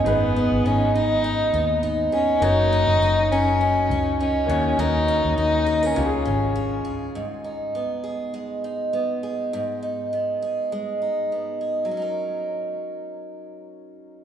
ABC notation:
X:1
M:4/4
L:1/16
Q:"Swing 16ths" 1/4=101
K:G#dor
V:1 name="Grand piano"
[DGB]16 | [A,CDFc]12- [A,CDFc]2 [A,CDFc]2- | [A,CDFc]8 [CE=G^G]8 | z16 |
z16 | z16 |]
V:2 name="Steel-string acoustic guitar"
[G,,B,DG]2 B,2 D2 G2 D2 B,2 D2 G2 | [F,A]2 C2 D2 A2 D2 C2 D2 D,2 | [D,A]2 C2 D2 G A C,2 C2 E2 G2 | G,,2 D2 B,2 G2 G,2 D2 B,2 G2 |
G,,2 D2 B,2 G2 G,2 D2 B,2 G2 | [F,CDA]16 |]
V:3 name="Violin"
B,4 C2 D6 z2 C2 | D6 C6 C4 | D4 D3 C6- C z2 | z16 |
z16 | z16 |]
V:4 name="Fingered electric bass" clef=bass
G,,,3 G,,, G,,,6 D,,4 z2 | F,,,3 F,,, F,,,6 C,,4 D,,2 | D,,3 D,, D,,4 C,,2 G,,,4 z2 | z16 |
z16 | z16 |]